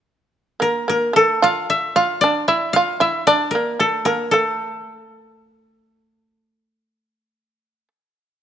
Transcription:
0.60 shamisen A#3, koto A#4
0.88 shamisen A#3, koto A#4
1.13 shamisen A3, koto A4
1.42 shamisen F4, koto F5
1.70 koto E5
1.96 shamisen F4, koto F5
2.21 shamisen D4, koto D5
2.48 shamisen E4, koto E5
2.73 shamisen F4, koto F5
3.00 shamisen E4, koto E5
3.27 shamisen D4, koto D5
3.51 koto A#4
3.55 shamisen A#3
3.80 shamisen A3, koto A4
4.05 shamisen A#3, koto A#4
4.31 shamisen A3, koto A4

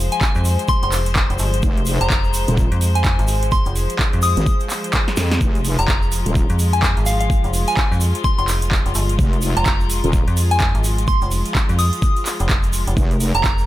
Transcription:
Already playing: string section F3 G#3 C5
0.12 synth bell G#5, closed hi-hat, shaker
0.21 kick, clap, shaker
0.35 fm bass F2, shaker
0.45 open hi-hat, shaker
0.59 closed hi-hat, shaker
0.68 synth bell C6, kick, shaker
0.83 fm bass F1, synth bell C6, closed hi-hat, shaker
0.92 clap, open hi-hat, shaker
1.06 closed hi-hat, shaker
1.15 kick, clap, shaker
1.30 fm bass F1, closed hi-hat, shaker
1.39 fm bass G1, open hi-hat, shaker
1.53 closed hi-hat, shaker
1.62 wobble bass F1, kick, shaker
1.77 closed hi-hat, shaker
1.85 open hi-hat, shaker
2.01 fm bass F1, synth bell A#5, closed hi-hat, shaker
2.10 kick, clap, shaker
2.24 shaker
2.34 open hi-hat, shaker
2.48 wobble bass D#1, closed hi-hat, shaker
2.57 kick, shaker
2.72 fm bass F2, closed hi-hat, shaker
2.81 open hi-hat, shaker
2.95 synth bell G#5, closed hi-hat, shaker
3.04 kick, clap, shaker
3.19 fm bass G#1, closed hi-hat, shaker
3.27 open hi-hat, shaker
3.43 closed hi-hat, shaker
3.51 synth bell C6, kick, shaker
3.66 fm bass F1, closed hi-hat, shaker
3.76 open hi-hat, shaker
3.90 closed hi-hat, shaker
3.99 kick, clap, shaker
4.13 fm bass F2, closed hi-hat, shaker
4.22 synth bell D#6, open hi-hat, shaker
4.37 wobble bass G#1, closed hi-hat, shaker
4.46 kick, shaker
4.60 closed hi-hat, shaker
4.69 clap, open hi-hat, shaker
4.84 closed hi-hat, shaker
4.93 kick, clap, shaker
5.08 snare, closed hi-hat, shaker
5.17 wobble bass F2, snare, open hi-hat, shaker
5.31 snare, closed hi-hat, shaker
5.41 wobble bass F1, string section F4, kick, shaker
5.55 closed hi-hat, shaker
5.65 open hi-hat, shaker
5.79 fm bass F1, synth bell A#5, closed hi-hat, shaker
5.88 kick, clap, shaker
6.02 shaker
6.12 open hi-hat, shaker
6.26 wobble bass D#1, closed hi-hat, shaker
6.35 kick, shaker
6.50 fm bass F2, closed hi-hat, shaker
6.59 open hi-hat, shaker
6.73 synth bell G#5, closed hi-hat, shaker
6.83 kick, clap, shaker
6.97 fm bass G#1, closed hi-hat, shaker
7.06 synth bell F5, open hi-hat, shaker
7.20 synth bell F5, closed hi-hat, shaker
7.30 kick, shaker
7.44 fm bass F1, closed hi-hat, shaker
7.53 open hi-hat, shaker
7.68 synth bell G#5, closed hi-hat, shaker
7.77 kick, clap, shaker
7.91 fm bass F2, shaker
8.01 open hi-hat, shaker
8.15 closed hi-hat, shaker
8.24 synth bell C6, kick, shaker
8.38 fm bass F1, synth bell C6, closed hi-hat, shaker
8.48 clap, open hi-hat, shaker
8.62 closed hi-hat, shaker
8.71 kick, clap, shaker
8.86 fm bass F1, closed hi-hat, shaker
8.95 fm bass G1, open hi-hat, shaker
9.09 closed hi-hat, shaker
9.19 wobble bass F1, kick, shaker
9.33 closed hi-hat, shaker
9.42 open hi-hat, shaker
9.57 fm bass F1, synth bell A#5, closed hi-hat, shaker
9.65 kick, clap, shaker
9.80 shaker
9.90 open hi-hat, shaker
10.04 wobble bass D#1, closed hi-hat, shaker
10.13 kick, shaker
10.27 fm bass F2, closed hi-hat, shaker
10.37 open hi-hat, shaker
10.51 synth bell G#5, closed hi-hat, shaker
10.60 kick, clap, shaker
10.75 fm bass G#1, closed hi-hat, shaker
10.84 open hi-hat, shaker
10.98 closed hi-hat, shaker
11.07 synth bell C6, kick, shaker
11.21 fm bass F1, closed hi-hat, shaker
11.31 open hi-hat, shaker
11.46 closed hi-hat, shaker
11.55 kick, clap, shaker
11.69 fm bass F2, closed hi-hat, shaker
11.79 synth bell D#6, open hi-hat, shaker
11.93 closed hi-hat, shaker
12.02 kick, shaker
12.16 closed hi-hat, shaker
12.26 clap, open hi-hat, shaker
12.40 fm bass F1, closed hi-hat, shaker
12.49 kick, clap, shaker
12.63 closed hi-hat, shaker
12.73 open hi-hat, shaker
12.87 fm bass F1, closed hi-hat, shaker
12.97 wobble bass F1, string section A#4, kick, shaker
13.11 closed hi-hat, shaker
13.20 open hi-hat, shaker
13.35 fm bass F1, synth bell A#5, closed hi-hat, shaker
13.44 kick, clap, shaker
13.58 shaker

